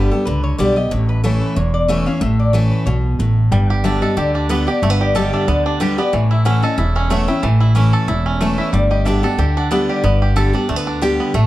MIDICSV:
0, 0, Header, 1, 5, 480
1, 0, Start_track
1, 0, Tempo, 325733
1, 1351, Time_signature, 4, 2, 24, 8
1, 16898, End_track
2, 0, Start_track
2, 0, Title_t, "Resonator guitar played with a steel bar"
2, 0, Program_c, 0, 25
2, 0, Note_on_c, 0, 71, 82
2, 162, Note_off_c, 0, 71, 0
2, 167, Note_on_c, 0, 69, 88
2, 374, Note_on_c, 0, 71, 97
2, 383, Note_off_c, 0, 69, 0
2, 636, Note_off_c, 0, 71, 0
2, 642, Note_on_c, 0, 73, 98
2, 859, Note_off_c, 0, 73, 0
2, 865, Note_on_c, 0, 74, 103
2, 1121, Note_off_c, 0, 74, 0
2, 1133, Note_on_c, 0, 75, 109
2, 1345, Note_off_c, 0, 75, 0
2, 1348, Note_on_c, 0, 73, 87
2, 1596, Note_off_c, 0, 73, 0
2, 1602, Note_on_c, 0, 71, 95
2, 1817, Note_off_c, 0, 71, 0
2, 1823, Note_on_c, 0, 69, 83
2, 2079, Note_on_c, 0, 71, 90
2, 2080, Note_off_c, 0, 69, 0
2, 2296, Note_off_c, 0, 71, 0
2, 2301, Note_on_c, 0, 73, 92
2, 2555, Note_off_c, 0, 73, 0
2, 2561, Note_on_c, 0, 74, 103
2, 2776, Note_off_c, 0, 74, 0
2, 2782, Note_on_c, 0, 76, 102
2, 3039, Note_off_c, 0, 76, 0
2, 3045, Note_on_c, 0, 77, 115
2, 3258, Note_off_c, 0, 77, 0
2, 3264, Note_on_c, 0, 76, 89
2, 3520, Note_off_c, 0, 76, 0
2, 3528, Note_on_c, 0, 74, 103
2, 3736, Note_off_c, 0, 74, 0
2, 3736, Note_on_c, 0, 73, 93
2, 3996, Note_off_c, 0, 73, 0
2, 4002, Note_on_c, 0, 71, 91
2, 4204, Note_off_c, 0, 71, 0
2, 4210, Note_on_c, 0, 73, 92
2, 4373, Note_off_c, 0, 73, 0
2, 5180, Note_on_c, 0, 79, 94
2, 5438, Note_off_c, 0, 79, 0
2, 5438, Note_on_c, 0, 78, 105
2, 5657, Note_off_c, 0, 78, 0
2, 5658, Note_on_c, 0, 76, 94
2, 5914, Note_off_c, 0, 76, 0
2, 5919, Note_on_c, 0, 75, 90
2, 6135, Note_off_c, 0, 75, 0
2, 6141, Note_on_c, 0, 74, 89
2, 6398, Note_off_c, 0, 74, 0
2, 6399, Note_on_c, 0, 67, 62
2, 6617, Note_off_c, 0, 67, 0
2, 6629, Note_on_c, 0, 71, 95
2, 6877, Note_on_c, 0, 74, 110
2, 6883, Note_off_c, 0, 71, 0
2, 7096, Note_off_c, 0, 74, 0
2, 7103, Note_on_c, 0, 73, 94
2, 7360, Note_off_c, 0, 73, 0
2, 7380, Note_on_c, 0, 74, 97
2, 7588, Note_off_c, 0, 74, 0
2, 7600, Note_on_c, 0, 75, 87
2, 7849, Note_off_c, 0, 75, 0
2, 7857, Note_on_c, 0, 76, 111
2, 8067, Note_off_c, 0, 76, 0
2, 8073, Note_on_c, 0, 74, 92
2, 8325, Note_off_c, 0, 74, 0
2, 8335, Note_on_c, 0, 67, 78
2, 8546, Note_off_c, 0, 67, 0
2, 8553, Note_on_c, 0, 71, 97
2, 8805, Note_off_c, 0, 71, 0
2, 8820, Note_on_c, 0, 74, 113
2, 9029, Note_off_c, 0, 74, 0
2, 9045, Note_on_c, 0, 73, 89
2, 9292, Note_off_c, 0, 73, 0
2, 9295, Note_on_c, 0, 76, 103
2, 9504, Note_off_c, 0, 76, 0
2, 9510, Note_on_c, 0, 78, 108
2, 9764, Note_off_c, 0, 78, 0
2, 9779, Note_on_c, 0, 75, 100
2, 9986, Note_off_c, 0, 75, 0
2, 9986, Note_on_c, 0, 76, 96
2, 10242, Note_off_c, 0, 76, 0
2, 10248, Note_on_c, 0, 77, 112
2, 10463, Note_off_c, 0, 77, 0
2, 10477, Note_on_c, 0, 78, 100
2, 10719, Note_off_c, 0, 78, 0
2, 10725, Note_on_c, 0, 79, 106
2, 10941, Note_on_c, 0, 81, 114
2, 10942, Note_off_c, 0, 79, 0
2, 11200, Note_off_c, 0, 81, 0
2, 11214, Note_on_c, 0, 76, 101
2, 11345, Note_off_c, 0, 76, 0
2, 12640, Note_on_c, 0, 76, 99
2, 12858, Note_off_c, 0, 76, 0
2, 12864, Note_on_c, 0, 74, 91
2, 13116, Note_off_c, 0, 74, 0
2, 13122, Note_on_c, 0, 75, 103
2, 13326, Note_off_c, 0, 75, 0
2, 13332, Note_on_c, 0, 76, 91
2, 13591, Note_on_c, 0, 78, 93
2, 13595, Note_off_c, 0, 76, 0
2, 13815, Note_off_c, 0, 78, 0
2, 13829, Note_on_c, 0, 79, 105
2, 14084, Note_off_c, 0, 79, 0
2, 14101, Note_on_c, 0, 78, 109
2, 14306, Note_off_c, 0, 78, 0
2, 14312, Note_on_c, 0, 76, 91
2, 14566, Note_off_c, 0, 76, 0
2, 14578, Note_on_c, 0, 74, 102
2, 15697, Note_off_c, 0, 74, 0
2, 16898, End_track
3, 0, Start_track
3, 0, Title_t, "Five-string banjo"
3, 0, Program_c, 1, 105
3, 5188, Note_on_c, 1, 55, 63
3, 5456, Note_on_c, 1, 67, 61
3, 5670, Note_on_c, 1, 62, 66
3, 5926, Note_on_c, 1, 69, 60
3, 5970, Note_off_c, 1, 55, 0
3, 6109, Note_off_c, 1, 67, 0
3, 6153, Note_on_c, 1, 67, 64
3, 6359, Note_off_c, 1, 62, 0
3, 6410, Note_on_c, 1, 62, 61
3, 6584, Note_off_c, 1, 69, 0
3, 6634, Note_on_c, 1, 59, 67
3, 6840, Note_off_c, 1, 67, 0
3, 6893, Note_on_c, 1, 67, 60
3, 7066, Note_off_c, 1, 62, 0
3, 7112, Note_off_c, 1, 59, 0
3, 7117, Note_on_c, 1, 57, 76
3, 7218, Note_off_c, 1, 57, 0
3, 7218, Note_on_c, 1, 59, 71
3, 7363, Note_off_c, 1, 67, 0
3, 7380, Note_on_c, 1, 67, 59
3, 7592, Note_off_c, 1, 59, 0
3, 7596, Note_on_c, 1, 69, 63
3, 7861, Note_on_c, 1, 62, 64
3, 8032, Note_off_c, 1, 67, 0
3, 8076, Note_on_c, 1, 59, 65
3, 8283, Note_off_c, 1, 69, 0
3, 8321, Note_off_c, 1, 62, 0
3, 8339, Note_on_c, 1, 62, 65
3, 8558, Note_on_c, 1, 67, 59
3, 8763, Note_off_c, 1, 59, 0
3, 8818, Note_on_c, 1, 59, 62
3, 8991, Note_off_c, 1, 62, 0
3, 9034, Note_off_c, 1, 59, 0
3, 9035, Note_off_c, 1, 67, 0
3, 9039, Note_on_c, 1, 52, 58
3, 9295, Note_on_c, 1, 64, 62
3, 9518, Note_on_c, 1, 61, 66
3, 9777, Note_on_c, 1, 69, 62
3, 9949, Note_off_c, 1, 64, 0
3, 9995, Note_on_c, 1, 64, 64
3, 10204, Note_off_c, 1, 61, 0
3, 10256, Note_on_c, 1, 61, 65
3, 10430, Note_off_c, 1, 69, 0
3, 10470, Note_on_c, 1, 57, 76
3, 10683, Note_off_c, 1, 64, 0
3, 10733, Note_on_c, 1, 64, 57
3, 10910, Note_off_c, 1, 61, 0
3, 10944, Note_off_c, 1, 52, 0
3, 10950, Note_on_c, 1, 52, 62
3, 11160, Note_off_c, 1, 57, 0
3, 11189, Note_off_c, 1, 64, 0
3, 11206, Note_on_c, 1, 64, 62
3, 11427, Note_on_c, 1, 61, 65
3, 11641, Note_off_c, 1, 52, 0
3, 11689, Note_on_c, 1, 69, 60
3, 11866, Note_off_c, 1, 64, 0
3, 11908, Note_on_c, 1, 64, 66
3, 12119, Note_off_c, 1, 61, 0
3, 12170, Note_on_c, 1, 61, 65
3, 12347, Note_off_c, 1, 69, 0
3, 12387, Note_on_c, 1, 57, 70
3, 12599, Note_off_c, 1, 64, 0
3, 12642, Note_on_c, 1, 64, 59
3, 12828, Note_off_c, 1, 61, 0
3, 12861, Note_on_c, 1, 55, 63
3, 12867, Note_off_c, 1, 64, 0
3, 12870, Note_off_c, 1, 57, 0
3, 13129, Note_on_c, 1, 67, 60
3, 13353, Note_on_c, 1, 62, 65
3, 13616, Note_on_c, 1, 69, 61
3, 13660, Note_off_c, 1, 55, 0
3, 13787, Note_off_c, 1, 67, 0
3, 13837, Note_on_c, 1, 67, 65
3, 14042, Note_off_c, 1, 62, 0
3, 14102, Note_on_c, 1, 62, 66
3, 14270, Note_off_c, 1, 69, 0
3, 14316, Note_on_c, 1, 59, 74
3, 14524, Note_off_c, 1, 67, 0
3, 14580, Note_on_c, 1, 67, 55
3, 14754, Note_off_c, 1, 62, 0
3, 14779, Note_off_c, 1, 59, 0
3, 14797, Note_on_c, 1, 59, 77
3, 15041, Note_off_c, 1, 67, 0
3, 15059, Note_on_c, 1, 67, 63
3, 15273, Note_on_c, 1, 69, 67
3, 15484, Note_off_c, 1, 59, 0
3, 15539, Note_on_c, 1, 62, 60
3, 15712, Note_off_c, 1, 67, 0
3, 15754, Note_on_c, 1, 57, 68
3, 15859, Note_off_c, 1, 57, 0
3, 15859, Note_on_c, 1, 59, 69
3, 15962, Note_off_c, 1, 69, 0
3, 16000, Note_off_c, 1, 62, 0
3, 16018, Note_on_c, 1, 62, 64
3, 16234, Note_off_c, 1, 59, 0
3, 16242, Note_on_c, 1, 67, 64
3, 16505, Note_on_c, 1, 59, 57
3, 16672, Note_off_c, 1, 62, 0
3, 16712, Note_off_c, 1, 59, 0
3, 16718, Note_off_c, 1, 67, 0
3, 16718, Note_on_c, 1, 57, 75
3, 16898, Note_off_c, 1, 57, 0
3, 16898, End_track
4, 0, Start_track
4, 0, Title_t, "Steel-string acoustic guitar"
4, 0, Program_c, 2, 25
4, 0, Note_on_c, 2, 43, 86
4, 0, Note_on_c, 2, 50, 88
4, 0, Note_on_c, 2, 55, 85
4, 0, Note_on_c, 2, 59, 90
4, 0, Note_on_c, 2, 67, 88
4, 152, Note_off_c, 2, 67, 0
4, 160, Note_off_c, 2, 50, 0
4, 162, Note_off_c, 2, 55, 0
4, 168, Note_off_c, 2, 59, 0
4, 170, Note_on_c, 2, 67, 63
4, 194, Note_on_c, 2, 59, 47
4, 353, Note_off_c, 2, 43, 0
4, 382, Note_off_c, 2, 67, 0
4, 394, Note_off_c, 2, 59, 0
4, 394, Note_on_c, 2, 50, 90
4, 843, Note_off_c, 2, 50, 0
4, 861, Note_on_c, 2, 50, 94
4, 870, Note_on_c, 2, 55, 95
4, 880, Note_on_c, 2, 59, 99
4, 884, Note_on_c, 2, 67, 107
4, 1103, Note_off_c, 2, 67, 0
4, 1117, Note_off_c, 2, 50, 0
4, 1120, Note_on_c, 2, 67, 58
4, 1121, Note_off_c, 2, 55, 0
4, 1126, Note_off_c, 2, 59, 0
4, 1143, Note_on_c, 2, 59, 46
4, 1337, Note_off_c, 2, 67, 0
4, 1344, Note_on_c, 2, 45, 89
4, 1348, Note_off_c, 2, 59, 0
4, 1821, Note_on_c, 2, 52, 82
4, 1828, Note_on_c, 2, 57, 89
4, 1834, Note_on_c, 2, 61, 90
4, 1842, Note_on_c, 2, 64, 101
4, 2263, Note_off_c, 2, 45, 0
4, 2284, Note_off_c, 2, 52, 0
4, 2287, Note_off_c, 2, 57, 0
4, 2290, Note_off_c, 2, 61, 0
4, 2294, Note_off_c, 2, 64, 0
4, 2305, Note_on_c, 2, 40, 89
4, 2776, Note_on_c, 2, 52, 91
4, 2786, Note_on_c, 2, 57, 99
4, 2793, Note_on_c, 2, 61, 93
4, 2801, Note_on_c, 2, 64, 99
4, 3019, Note_off_c, 2, 64, 0
4, 3033, Note_off_c, 2, 52, 0
4, 3037, Note_on_c, 2, 64, 57
4, 3039, Note_off_c, 2, 57, 0
4, 3042, Note_off_c, 2, 61, 0
4, 3059, Note_on_c, 2, 61, 50
4, 3224, Note_off_c, 2, 40, 0
4, 3254, Note_off_c, 2, 64, 0
4, 3258, Note_on_c, 2, 45, 93
4, 3265, Note_off_c, 2, 61, 0
4, 3731, Note_on_c, 2, 52, 87
4, 3743, Note_on_c, 2, 57, 89
4, 3749, Note_on_c, 2, 61, 88
4, 3755, Note_on_c, 2, 64, 91
4, 4180, Note_off_c, 2, 45, 0
4, 4198, Note_off_c, 2, 52, 0
4, 4204, Note_off_c, 2, 57, 0
4, 4208, Note_off_c, 2, 61, 0
4, 4211, Note_off_c, 2, 64, 0
4, 4224, Note_on_c, 2, 47, 86
4, 4685, Note_off_c, 2, 47, 0
4, 4711, Note_on_c, 2, 45, 90
4, 5169, Note_off_c, 2, 45, 0
4, 5187, Note_on_c, 2, 43, 91
4, 5656, Note_on_c, 2, 50, 83
4, 5662, Note_on_c, 2, 55, 89
4, 5671, Note_on_c, 2, 59, 94
4, 5679, Note_on_c, 2, 67, 91
4, 5902, Note_off_c, 2, 67, 0
4, 5913, Note_off_c, 2, 50, 0
4, 5916, Note_off_c, 2, 55, 0
4, 5919, Note_on_c, 2, 67, 64
4, 5921, Note_off_c, 2, 59, 0
4, 5940, Note_on_c, 2, 59, 48
4, 6105, Note_off_c, 2, 43, 0
4, 6135, Note_off_c, 2, 67, 0
4, 6143, Note_on_c, 2, 50, 94
4, 6146, Note_off_c, 2, 59, 0
4, 6602, Note_off_c, 2, 50, 0
4, 6619, Note_on_c, 2, 50, 94
4, 6623, Note_on_c, 2, 55, 90
4, 6631, Note_on_c, 2, 59, 93
4, 6641, Note_on_c, 2, 67, 107
4, 6862, Note_off_c, 2, 67, 0
4, 6875, Note_off_c, 2, 50, 0
4, 6877, Note_off_c, 2, 55, 0
4, 6880, Note_on_c, 2, 67, 62
4, 6881, Note_off_c, 2, 59, 0
4, 6906, Note_on_c, 2, 59, 52
4, 7096, Note_off_c, 2, 67, 0
4, 7109, Note_off_c, 2, 59, 0
4, 7115, Note_on_c, 2, 43, 90
4, 7588, Note_on_c, 2, 50, 93
4, 7598, Note_on_c, 2, 55, 89
4, 7605, Note_on_c, 2, 59, 96
4, 7612, Note_on_c, 2, 67, 102
4, 8029, Note_off_c, 2, 43, 0
4, 8047, Note_off_c, 2, 50, 0
4, 8053, Note_off_c, 2, 55, 0
4, 8056, Note_off_c, 2, 59, 0
4, 8060, Note_off_c, 2, 67, 0
4, 8075, Note_on_c, 2, 50, 91
4, 8529, Note_off_c, 2, 50, 0
4, 8547, Note_on_c, 2, 50, 104
4, 8556, Note_on_c, 2, 55, 90
4, 8562, Note_on_c, 2, 59, 104
4, 8573, Note_on_c, 2, 67, 103
4, 8793, Note_off_c, 2, 67, 0
4, 8800, Note_off_c, 2, 50, 0
4, 8804, Note_off_c, 2, 55, 0
4, 8807, Note_off_c, 2, 59, 0
4, 8811, Note_on_c, 2, 67, 60
4, 8835, Note_on_c, 2, 59, 47
4, 9022, Note_off_c, 2, 67, 0
4, 9032, Note_on_c, 2, 45, 90
4, 9034, Note_off_c, 2, 59, 0
4, 9506, Note_on_c, 2, 52, 88
4, 9514, Note_on_c, 2, 57, 91
4, 9524, Note_on_c, 2, 61, 86
4, 9526, Note_on_c, 2, 64, 100
4, 9744, Note_off_c, 2, 64, 0
4, 9760, Note_off_c, 2, 52, 0
4, 9762, Note_on_c, 2, 64, 61
4, 9763, Note_off_c, 2, 57, 0
4, 9768, Note_off_c, 2, 61, 0
4, 9788, Note_on_c, 2, 61, 52
4, 9948, Note_off_c, 2, 45, 0
4, 9978, Note_off_c, 2, 64, 0
4, 9986, Note_on_c, 2, 40, 90
4, 9991, Note_off_c, 2, 61, 0
4, 10466, Note_on_c, 2, 52, 94
4, 10474, Note_on_c, 2, 57, 93
4, 10479, Note_on_c, 2, 61, 96
4, 10489, Note_on_c, 2, 64, 102
4, 10708, Note_off_c, 2, 64, 0
4, 10720, Note_off_c, 2, 52, 0
4, 10724, Note_off_c, 2, 57, 0
4, 10726, Note_off_c, 2, 61, 0
4, 10726, Note_on_c, 2, 64, 61
4, 10753, Note_on_c, 2, 61, 49
4, 10906, Note_off_c, 2, 40, 0
4, 10940, Note_off_c, 2, 64, 0
4, 10950, Note_on_c, 2, 45, 91
4, 10954, Note_off_c, 2, 61, 0
4, 11419, Note_on_c, 2, 52, 84
4, 11433, Note_on_c, 2, 57, 84
4, 11438, Note_on_c, 2, 61, 99
4, 11446, Note_on_c, 2, 64, 91
4, 11868, Note_off_c, 2, 45, 0
4, 11884, Note_off_c, 2, 52, 0
4, 11891, Note_off_c, 2, 57, 0
4, 11894, Note_off_c, 2, 61, 0
4, 11898, Note_off_c, 2, 64, 0
4, 11907, Note_on_c, 2, 40, 86
4, 12388, Note_on_c, 2, 52, 89
4, 12393, Note_on_c, 2, 57, 96
4, 12401, Note_on_c, 2, 61, 92
4, 12410, Note_on_c, 2, 64, 101
4, 12827, Note_off_c, 2, 40, 0
4, 12849, Note_off_c, 2, 52, 0
4, 12851, Note_off_c, 2, 57, 0
4, 12856, Note_off_c, 2, 61, 0
4, 12860, Note_off_c, 2, 64, 0
4, 12874, Note_on_c, 2, 43, 91
4, 13344, Note_on_c, 2, 50, 78
4, 13355, Note_on_c, 2, 55, 80
4, 13359, Note_on_c, 2, 59, 93
4, 13372, Note_on_c, 2, 67, 98
4, 13585, Note_off_c, 2, 67, 0
4, 13599, Note_off_c, 2, 50, 0
4, 13603, Note_on_c, 2, 67, 65
4, 13605, Note_off_c, 2, 55, 0
4, 13607, Note_off_c, 2, 59, 0
4, 13628, Note_on_c, 2, 59, 48
4, 13790, Note_off_c, 2, 43, 0
4, 13819, Note_off_c, 2, 67, 0
4, 13829, Note_on_c, 2, 50, 85
4, 13832, Note_off_c, 2, 59, 0
4, 14287, Note_off_c, 2, 50, 0
4, 14305, Note_on_c, 2, 50, 92
4, 14313, Note_on_c, 2, 55, 100
4, 14318, Note_on_c, 2, 59, 103
4, 14328, Note_on_c, 2, 67, 110
4, 14767, Note_off_c, 2, 50, 0
4, 14772, Note_off_c, 2, 55, 0
4, 14774, Note_off_c, 2, 59, 0
4, 14779, Note_off_c, 2, 67, 0
4, 14788, Note_on_c, 2, 43, 95
4, 15265, Note_on_c, 2, 50, 91
4, 15272, Note_on_c, 2, 55, 91
4, 15280, Note_on_c, 2, 59, 91
4, 15290, Note_on_c, 2, 67, 95
4, 15505, Note_off_c, 2, 67, 0
4, 15520, Note_off_c, 2, 50, 0
4, 15523, Note_off_c, 2, 55, 0
4, 15523, Note_on_c, 2, 67, 64
4, 15527, Note_off_c, 2, 59, 0
4, 15543, Note_on_c, 2, 59, 54
4, 15707, Note_off_c, 2, 43, 0
4, 15739, Note_off_c, 2, 67, 0
4, 15749, Note_off_c, 2, 59, 0
4, 15751, Note_on_c, 2, 50, 92
4, 16215, Note_off_c, 2, 50, 0
4, 16232, Note_on_c, 2, 50, 93
4, 16242, Note_on_c, 2, 55, 87
4, 16244, Note_on_c, 2, 59, 96
4, 16253, Note_on_c, 2, 67, 111
4, 16691, Note_off_c, 2, 50, 0
4, 16696, Note_off_c, 2, 55, 0
4, 16697, Note_off_c, 2, 59, 0
4, 16702, Note_off_c, 2, 67, 0
4, 16713, Note_on_c, 2, 45, 97
4, 16898, Note_off_c, 2, 45, 0
4, 16898, End_track
5, 0, Start_track
5, 0, Title_t, "Upright bass"
5, 0, Program_c, 3, 32
5, 391, Note_on_c, 3, 37, 84
5, 799, Note_off_c, 3, 37, 0
5, 869, Note_on_c, 3, 35, 92
5, 1278, Note_off_c, 3, 35, 0
5, 1348, Note_on_c, 3, 33, 96
5, 2062, Note_off_c, 3, 33, 0
5, 2307, Note_on_c, 3, 28, 80
5, 3021, Note_off_c, 3, 28, 0
5, 3259, Note_on_c, 3, 33, 97
5, 3976, Note_off_c, 3, 33, 0
5, 4220, Note_on_c, 3, 35, 87
5, 4632, Note_off_c, 3, 35, 0
5, 4703, Note_on_c, 3, 33, 90
5, 5114, Note_off_c, 3, 33, 0
5, 5181, Note_on_c, 3, 31, 100
5, 5897, Note_off_c, 3, 31, 0
5, 6144, Note_on_c, 3, 38, 83
5, 6860, Note_off_c, 3, 38, 0
5, 7109, Note_on_c, 3, 31, 95
5, 7823, Note_off_c, 3, 31, 0
5, 8075, Note_on_c, 3, 38, 83
5, 8787, Note_off_c, 3, 38, 0
5, 9037, Note_on_c, 3, 33, 94
5, 9749, Note_off_c, 3, 33, 0
5, 9989, Note_on_c, 3, 28, 82
5, 10704, Note_off_c, 3, 28, 0
5, 10952, Note_on_c, 3, 33, 102
5, 11666, Note_off_c, 3, 33, 0
5, 11903, Note_on_c, 3, 28, 86
5, 12620, Note_off_c, 3, 28, 0
5, 12865, Note_on_c, 3, 31, 92
5, 13582, Note_off_c, 3, 31, 0
5, 13821, Note_on_c, 3, 38, 84
5, 14539, Note_off_c, 3, 38, 0
5, 14793, Note_on_c, 3, 31, 97
5, 15507, Note_off_c, 3, 31, 0
5, 15759, Note_on_c, 3, 38, 88
5, 16471, Note_off_c, 3, 38, 0
5, 16711, Note_on_c, 3, 33, 97
5, 16898, Note_off_c, 3, 33, 0
5, 16898, End_track
0, 0, End_of_file